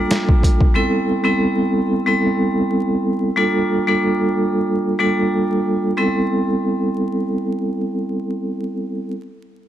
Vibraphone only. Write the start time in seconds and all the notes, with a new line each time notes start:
Already playing: G3 A#3 D4 F4 A4
0.74 G3 B3 C4 E4 A4
1.24 G3 B3 C4 E4 A4
2.06 G3 B3 C4 E4 A4
3.36 G3 A#3 D4 F4 A4
3.87 G3 A#3 D4 F4 A4
4.99 G3 A#3 D4 F4 A4
5.97 G3 B3 C4 E4 A4